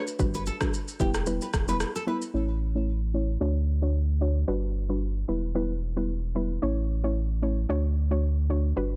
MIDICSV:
0, 0, Header, 1, 6, 480
1, 0, Start_track
1, 0, Tempo, 535714
1, 175, Time_signature, 4, 2, 24, 8
1, 8031, End_track
2, 0, Start_track
2, 0, Title_t, "Marimba"
2, 0, Program_c, 0, 12
2, 0, Note_on_c, 0, 71, 88
2, 1824, Note_off_c, 0, 71, 0
2, 8031, End_track
3, 0, Start_track
3, 0, Title_t, "Nylon-string guitar"
3, 0, Program_c, 1, 24
3, 311, Note_on_c, 1, 71, 89
3, 374, Note_off_c, 1, 71, 0
3, 421, Note_on_c, 1, 69, 71
3, 498, Note_off_c, 1, 69, 0
3, 902, Note_on_c, 1, 67, 78
3, 979, Note_off_c, 1, 67, 0
3, 1274, Note_on_c, 1, 71, 70
3, 1336, Note_off_c, 1, 71, 0
3, 1512, Note_on_c, 1, 71, 82
3, 1575, Note_off_c, 1, 71, 0
3, 1752, Note_on_c, 1, 69, 77
3, 1815, Note_off_c, 1, 69, 0
3, 1861, Note_on_c, 1, 71, 77
3, 1938, Note_off_c, 1, 71, 0
3, 8031, End_track
4, 0, Start_track
4, 0, Title_t, "Synth pluck"
4, 0, Program_c, 2, 84
4, 170, Note_on_c, 2, 55, 92
4, 171, Note_on_c, 2, 62, 83
4, 173, Note_on_c, 2, 66, 85
4, 174, Note_on_c, 2, 71, 100
4, 512, Note_off_c, 2, 55, 0
4, 513, Note_off_c, 2, 62, 0
4, 514, Note_off_c, 2, 66, 0
4, 515, Note_off_c, 2, 71, 0
4, 543, Note_on_c, 2, 55, 74
4, 545, Note_on_c, 2, 62, 70
4, 547, Note_on_c, 2, 66, 69
4, 548, Note_on_c, 2, 71, 83
4, 670, Note_off_c, 2, 55, 0
4, 671, Note_off_c, 2, 62, 0
4, 672, Note_off_c, 2, 66, 0
4, 673, Note_off_c, 2, 71, 0
4, 892, Note_on_c, 2, 55, 78
4, 893, Note_on_c, 2, 59, 69
4, 895, Note_on_c, 2, 64, 74
4, 898, Note_on_c, 2, 71, 87
4, 1040, Note_off_c, 2, 55, 0
4, 1040, Note_off_c, 2, 59, 0
4, 1041, Note_off_c, 2, 64, 0
4, 1042, Note_off_c, 2, 71, 0
4, 1133, Note_on_c, 2, 55, 93
4, 1135, Note_on_c, 2, 59, 85
4, 1136, Note_on_c, 2, 64, 85
4, 1138, Note_on_c, 2, 71, 106
4, 1280, Note_off_c, 2, 55, 0
4, 1281, Note_off_c, 2, 59, 0
4, 1282, Note_off_c, 2, 64, 0
4, 1283, Note_off_c, 2, 71, 0
4, 1504, Note_on_c, 2, 55, 75
4, 1506, Note_on_c, 2, 59, 73
4, 1507, Note_on_c, 2, 64, 75
4, 1510, Note_on_c, 2, 71, 87
4, 1631, Note_off_c, 2, 55, 0
4, 1632, Note_off_c, 2, 59, 0
4, 1632, Note_off_c, 2, 64, 0
4, 1634, Note_off_c, 2, 71, 0
4, 1851, Note_on_c, 2, 55, 77
4, 1854, Note_on_c, 2, 59, 74
4, 1855, Note_on_c, 2, 64, 70
4, 1857, Note_on_c, 2, 71, 86
4, 1999, Note_off_c, 2, 55, 0
4, 2000, Note_off_c, 2, 59, 0
4, 2001, Note_off_c, 2, 64, 0
4, 2002, Note_off_c, 2, 71, 0
4, 2092, Note_on_c, 2, 57, 86
4, 2094, Note_on_c, 2, 61, 79
4, 2096, Note_on_c, 2, 64, 79
4, 2098, Note_on_c, 2, 73, 97
4, 2434, Note_off_c, 2, 57, 0
4, 2435, Note_off_c, 2, 61, 0
4, 2435, Note_off_c, 2, 64, 0
4, 2437, Note_off_c, 2, 73, 0
4, 2465, Note_on_c, 2, 57, 72
4, 2465, Note_on_c, 2, 61, 67
4, 2468, Note_on_c, 2, 64, 67
4, 2469, Note_on_c, 2, 73, 79
4, 2591, Note_off_c, 2, 57, 0
4, 2591, Note_off_c, 2, 61, 0
4, 2593, Note_off_c, 2, 64, 0
4, 2593, Note_off_c, 2, 73, 0
4, 2812, Note_on_c, 2, 57, 76
4, 2814, Note_on_c, 2, 61, 66
4, 2816, Note_on_c, 2, 64, 66
4, 2817, Note_on_c, 2, 73, 82
4, 2959, Note_off_c, 2, 57, 0
4, 2961, Note_off_c, 2, 61, 0
4, 2961, Note_off_c, 2, 64, 0
4, 2962, Note_off_c, 2, 73, 0
4, 3049, Note_on_c, 2, 57, 93
4, 3051, Note_on_c, 2, 62, 83
4, 3052, Note_on_c, 2, 66, 85
4, 3055, Note_on_c, 2, 73, 97
4, 3198, Note_off_c, 2, 57, 0
4, 3199, Note_off_c, 2, 62, 0
4, 3200, Note_off_c, 2, 66, 0
4, 3201, Note_off_c, 2, 73, 0
4, 3421, Note_on_c, 2, 57, 77
4, 3424, Note_on_c, 2, 62, 68
4, 3425, Note_on_c, 2, 66, 71
4, 3427, Note_on_c, 2, 73, 82
4, 3549, Note_off_c, 2, 57, 0
4, 3551, Note_off_c, 2, 62, 0
4, 3551, Note_off_c, 2, 66, 0
4, 3552, Note_off_c, 2, 73, 0
4, 3770, Note_on_c, 2, 57, 73
4, 3773, Note_on_c, 2, 62, 69
4, 3774, Note_on_c, 2, 66, 69
4, 3776, Note_on_c, 2, 73, 86
4, 3919, Note_off_c, 2, 57, 0
4, 3920, Note_off_c, 2, 62, 0
4, 3920, Note_off_c, 2, 66, 0
4, 3921, Note_off_c, 2, 73, 0
4, 4009, Note_on_c, 2, 55, 94
4, 4010, Note_on_c, 2, 62, 80
4, 4013, Note_on_c, 2, 66, 83
4, 4014, Note_on_c, 2, 71, 102
4, 4352, Note_off_c, 2, 55, 0
4, 4353, Note_off_c, 2, 62, 0
4, 4354, Note_off_c, 2, 66, 0
4, 4354, Note_off_c, 2, 71, 0
4, 4382, Note_on_c, 2, 55, 73
4, 4384, Note_on_c, 2, 62, 65
4, 4386, Note_on_c, 2, 66, 66
4, 4387, Note_on_c, 2, 71, 78
4, 4510, Note_off_c, 2, 55, 0
4, 4511, Note_off_c, 2, 62, 0
4, 4512, Note_off_c, 2, 66, 0
4, 4512, Note_off_c, 2, 71, 0
4, 4730, Note_on_c, 2, 55, 75
4, 4732, Note_on_c, 2, 59, 68
4, 4734, Note_on_c, 2, 64, 69
4, 4736, Note_on_c, 2, 71, 83
4, 4879, Note_off_c, 2, 55, 0
4, 4880, Note_off_c, 2, 59, 0
4, 4881, Note_off_c, 2, 64, 0
4, 4882, Note_off_c, 2, 71, 0
4, 4971, Note_on_c, 2, 55, 90
4, 4973, Note_on_c, 2, 59, 83
4, 4975, Note_on_c, 2, 64, 83
4, 4976, Note_on_c, 2, 71, 102
4, 5119, Note_off_c, 2, 55, 0
4, 5120, Note_off_c, 2, 59, 0
4, 5121, Note_off_c, 2, 64, 0
4, 5122, Note_off_c, 2, 71, 0
4, 5343, Note_on_c, 2, 55, 77
4, 5345, Note_on_c, 2, 59, 70
4, 5347, Note_on_c, 2, 64, 71
4, 5349, Note_on_c, 2, 71, 83
4, 5470, Note_off_c, 2, 55, 0
4, 5471, Note_off_c, 2, 59, 0
4, 5472, Note_off_c, 2, 64, 0
4, 5473, Note_off_c, 2, 71, 0
4, 5690, Note_on_c, 2, 55, 79
4, 5693, Note_on_c, 2, 59, 70
4, 5695, Note_on_c, 2, 64, 71
4, 5696, Note_on_c, 2, 71, 85
4, 5839, Note_off_c, 2, 55, 0
4, 5840, Note_off_c, 2, 59, 0
4, 5841, Note_off_c, 2, 64, 0
4, 5842, Note_off_c, 2, 71, 0
4, 5931, Note_on_c, 2, 57, 89
4, 5932, Note_on_c, 2, 61, 84
4, 5934, Note_on_c, 2, 64, 83
4, 5935, Note_on_c, 2, 73, 98
4, 6273, Note_off_c, 2, 57, 0
4, 6274, Note_off_c, 2, 61, 0
4, 6275, Note_off_c, 2, 64, 0
4, 6275, Note_off_c, 2, 73, 0
4, 6304, Note_on_c, 2, 57, 74
4, 6305, Note_on_c, 2, 61, 65
4, 6307, Note_on_c, 2, 64, 70
4, 6309, Note_on_c, 2, 73, 79
4, 6431, Note_off_c, 2, 57, 0
4, 6431, Note_off_c, 2, 61, 0
4, 6432, Note_off_c, 2, 64, 0
4, 6433, Note_off_c, 2, 73, 0
4, 6651, Note_on_c, 2, 57, 76
4, 6652, Note_on_c, 2, 61, 69
4, 6654, Note_on_c, 2, 64, 68
4, 6655, Note_on_c, 2, 73, 85
4, 6799, Note_off_c, 2, 57, 0
4, 6800, Note_off_c, 2, 61, 0
4, 6800, Note_off_c, 2, 64, 0
4, 6801, Note_off_c, 2, 73, 0
4, 6891, Note_on_c, 2, 57, 95
4, 6892, Note_on_c, 2, 62, 82
4, 6894, Note_on_c, 2, 66, 85
4, 6896, Note_on_c, 2, 73, 100
4, 7039, Note_off_c, 2, 57, 0
4, 7040, Note_off_c, 2, 62, 0
4, 7041, Note_off_c, 2, 66, 0
4, 7042, Note_off_c, 2, 73, 0
4, 7264, Note_on_c, 2, 57, 76
4, 7266, Note_on_c, 2, 62, 70
4, 7268, Note_on_c, 2, 66, 71
4, 7270, Note_on_c, 2, 73, 86
4, 7391, Note_off_c, 2, 57, 0
4, 7392, Note_off_c, 2, 62, 0
4, 7393, Note_off_c, 2, 66, 0
4, 7394, Note_off_c, 2, 73, 0
4, 7612, Note_on_c, 2, 57, 75
4, 7614, Note_on_c, 2, 62, 71
4, 7615, Note_on_c, 2, 66, 68
4, 7618, Note_on_c, 2, 73, 82
4, 7760, Note_off_c, 2, 57, 0
4, 7760, Note_off_c, 2, 62, 0
4, 7761, Note_off_c, 2, 66, 0
4, 7762, Note_off_c, 2, 73, 0
4, 7851, Note_on_c, 2, 55, 86
4, 7853, Note_on_c, 2, 62, 83
4, 7854, Note_on_c, 2, 66, 82
4, 7856, Note_on_c, 2, 71, 102
4, 8031, Note_off_c, 2, 55, 0
4, 8031, Note_off_c, 2, 62, 0
4, 8031, Note_off_c, 2, 66, 0
4, 8031, Note_off_c, 2, 71, 0
4, 8031, End_track
5, 0, Start_track
5, 0, Title_t, "Sub bass"
5, 0, Program_c, 3, 38
5, 175, Note_on_c, 3, 31, 106
5, 447, Note_off_c, 3, 31, 0
5, 895, Note_on_c, 3, 28, 104
5, 1246, Note_off_c, 3, 28, 0
5, 1376, Note_on_c, 3, 28, 92
5, 1648, Note_off_c, 3, 28, 0
5, 2094, Note_on_c, 3, 33, 83
5, 3019, Note_off_c, 3, 33, 0
5, 3053, Note_on_c, 3, 38, 79
5, 3978, Note_off_c, 3, 38, 0
5, 4013, Note_on_c, 3, 31, 81
5, 4698, Note_off_c, 3, 31, 0
5, 4734, Note_on_c, 3, 28, 87
5, 5898, Note_off_c, 3, 28, 0
5, 5935, Note_on_c, 3, 33, 87
5, 6859, Note_off_c, 3, 33, 0
5, 6894, Note_on_c, 3, 38, 80
5, 7819, Note_off_c, 3, 38, 0
5, 7853, Note_on_c, 3, 31, 84
5, 8031, Note_off_c, 3, 31, 0
5, 8031, End_track
6, 0, Start_track
6, 0, Title_t, "Drums"
6, 67, Note_on_c, 9, 82, 52
6, 156, Note_off_c, 9, 82, 0
6, 175, Note_on_c, 9, 36, 113
6, 175, Note_on_c, 9, 82, 70
6, 264, Note_off_c, 9, 36, 0
6, 265, Note_off_c, 9, 82, 0
6, 306, Note_on_c, 9, 82, 49
6, 396, Note_off_c, 9, 82, 0
6, 416, Note_on_c, 9, 82, 47
6, 506, Note_off_c, 9, 82, 0
6, 543, Note_on_c, 9, 37, 110
6, 548, Note_on_c, 9, 36, 89
6, 548, Note_on_c, 9, 82, 50
6, 633, Note_off_c, 9, 37, 0
6, 637, Note_off_c, 9, 82, 0
6, 638, Note_off_c, 9, 36, 0
6, 662, Note_on_c, 9, 82, 70
6, 752, Note_off_c, 9, 82, 0
6, 788, Note_on_c, 9, 82, 50
6, 878, Note_off_c, 9, 82, 0
6, 895, Note_on_c, 9, 36, 94
6, 895, Note_on_c, 9, 82, 50
6, 984, Note_off_c, 9, 36, 0
6, 984, Note_off_c, 9, 82, 0
6, 1025, Note_on_c, 9, 82, 59
6, 1026, Note_on_c, 9, 37, 97
6, 1114, Note_off_c, 9, 82, 0
6, 1115, Note_off_c, 9, 37, 0
6, 1134, Note_on_c, 9, 82, 80
6, 1223, Note_off_c, 9, 82, 0
6, 1269, Note_on_c, 9, 82, 59
6, 1359, Note_off_c, 9, 82, 0
6, 1376, Note_on_c, 9, 36, 93
6, 1376, Note_on_c, 9, 37, 106
6, 1377, Note_on_c, 9, 82, 59
6, 1465, Note_off_c, 9, 37, 0
6, 1466, Note_off_c, 9, 36, 0
6, 1467, Note_off_c, 9, 82, 0
6, 1507, Note_on_c, 9, 82, 67
6, 1597, Note_off_c, 9, 82, 0
6, 1615, Note_on_c, 9, 37, 96
6, 1616, Note_on_c, 9, 82, 70
6, 1705, Note_off_c, 9, 37, 0
6, 1706, Note_off_c, 9, 82, 0
6, 1756, Note_on_c, 9, 82, 46
6, 1845, Note_off_c, 9, 82, 0
6, 1988, Note_on_c, 9, 82, 55
6, 2078, Note_off_c, 9, 82, 0
6, 8031, End_track
0, 0, End_of_file